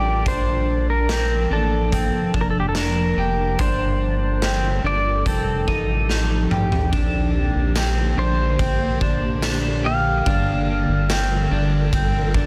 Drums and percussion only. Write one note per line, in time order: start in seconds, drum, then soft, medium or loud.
0.26 kick medium
0.26 closed hi-hat medium
1.09 snare loud
1.09 closed hi-hat medium
1.92 kick medium
1.92 closed hi-hat medium
2.34 kick medium
2.75 snare loud
2.75 closed hi-hat medium
3.59 kick loud
3.59 closed hi-hat medium
4.42 snare loud
4.42 closed hi-hat medium
5.26 kick medium
5.26 closed hi-hat medium
5.68 kick medium
6.10 snare medium
6.51 mid tom medium
6.72 floor tom medium
6.93 kick loud
6.93 ride medium
7.76 snare loud
7.76 ride medium
7.76 tambourine medium
8.59 kick medium
8.59 ride medium
9.01 kick medium
9.42 snare loud
9.42 ride medium
9.42 tambourine medium
10.26 kick loud
10.26 ride medium
11.10 snare loud
11.10 ride medium
11.10 tambourine medium
11.93 kick loud
11.93 ride medium
12.34 kick medium